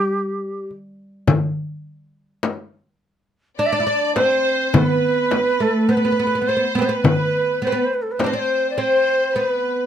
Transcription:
Already playing: G3 G4
0.71 darbuka ka
1.28 frame drum, darbuka dum
2.43 darbuka tek, frame drum
3.58 D4 D5, darbuka ka
3.65 E5
3.72 D4 D5
3.80 E4
3.87 D4
4.15 C4 C5, darbuka tek, frame drum
4.73 B3 B4 C5, frame drum, darbuka dum
4.84 B4
5.31 darbuka tek, frame drum
5.60 A3 A4
5.89 B3 B4 C5, darbuka ka
5.94 B3 B4
6.05 B3
6.12 B3
6.19 B3
6.27 B3
6.35 B3
6.42 B3
6.47 B3 C5
6.57 B3
6.75 B3 C4 B4
6.82 B3 C5
6.88 B3 B4 C5
6.95 B4
7.04 darbuka dum, frame drum
7.62 B3 B4 C5
7.67 C4 B4
7.72 B3
7.84 C5
7.93 B4
8.01 A4
8.11 B4
8.19 C4 C5, darbuka tek, frame drum
8.24 C4 D4 B4
8.33 C4 D5
8.39 C5
8.70 D5
8.77 C4 C5
9.34 B3 B4, darbuka ka

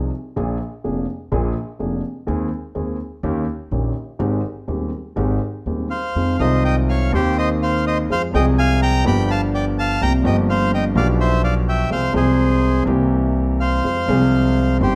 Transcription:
0.36 A#1 A#2 F3 A#3 D4 G#4
0.84 F1 F2 F3 A#3 D4 G#4
1.32 A#1 A#2 F3 A#3 D4 G#4
1.79 F1 F2 F3 A#3 D4 G#4
2.27 D#2 D#3 G#3 C4 G#4
2.75 D#2 D#3 G#3 C4 G#4
3.23 D#2 D#3 A#3 C#4 G4
3.71 A#1 A#2 D#3 A#3 C#4 G4
4.19 G#1 G#2 D#3 G#3 C4 G4
4.68 D#1 D#2 D#3 G#3 C4 G4
5.16 G#1 G#2 D#3 G#3 C4 G4
5.66 D#1 D#2 D#3 G#3 C4 G4
5.90 C5 F5
6.16 F2 D#3 F3 G#3 C4 F4
6.38 C2 C3 D#3 G#3 C4 F4 C5 D#5
6.64 D#5 G5
6.89 C#5 F5
7.12 D#2 D#3 A#3 C4 G4 C5
7.38 C5 D#5
7.62 C5 F5
7.87 C5 D#5
8.10 F2 F3 G#3 C4 G#4 C5 F5
8.31 C2 C3 F3 G#3 C4 D#5 G5
8.36 G#4
8.58 F5 G#5
8.82 G5 A#5
9.03 G1 G2 F3 B3 D4 G4 B5
9.08 G5
9.31 F5 A5
9.55 D5 G5
9.79 F5 A5
10.01 C2 C3 F3 A#3 C4 G4 G5 A#5
10.22 G1 G2 F3 A#3 C4 G5
10.26 G4 D#5
10.50 C5 F5
10.74 D#5 G5
10.94 B1 B2 F3 B3 D4 G4 D5 F5
11.20 C5 E5
11.44 D5 F5
11.69 E5 G5
11.90 C2 C3 F3 G#3 C4 G#4 C5 F5
12.12 C2 C3 F3 G#3 C4
12.16 G#4 C5
12.84 C2 C3 E3 A#3 C4 G4
13.60 C5 F5
13.84 F2 F3 G#3 C4 G#4
14.06 C2 C3 F3 G#3 C4
14.10 G#4
14.78 G1 G2 D#3 G3 C4 C5
14.83 G4

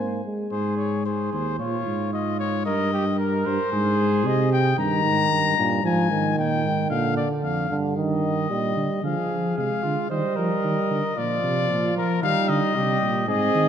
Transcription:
Already playing: G#2 A#3 C5 G#5
0.25 G#3
0.51 G#2 G#4 C5
0.77 C#5
1.05 G#4 C5
1.33 D#2 C5
1.59 A#2 F4 C#5
1.86 G#2
2.13 F4 D#5
2.39 C#5
2.65 G2 A#4 D#5
2.93 G4
3.18 A#4
3.46 G2 C5
3.72 G#2 G#4
4.25 C3 D#5
4.52 G5
4.78 G2 D#3 A#5
5.04 G#2
5.31 G2
5.58 G2 A#2
5.84 G#2 F3 G#5
6.11 D#3
6.37 A#2 G5
6.64 G#2
6.90 A#2 D3 F5
7.17 D5
7.43 F2 F5
7.70 G2 D3
7.96 D#3 D#5
8.50 A#2 G3
8.76 D3
9.03 D3 F3 G#4 F5
9.31 F3
9.57 C3 G#3 F5
9.83 D3 F4
10.10 D#3 G3 C5 D#5
10.36 F3 A#4
10.64 D#3
10.91 D3
11.16 A#2 F3 F4 D5
11.43 C3
11.70 A#2
11.96 F3 A#4
12.22 D#3 G3 D#4 F5
12.48 D3 D#5
12.75 C3 G3 G4
13.02 A#2
13.28 G#2 C4 G#4 D#5
13.55 D#3

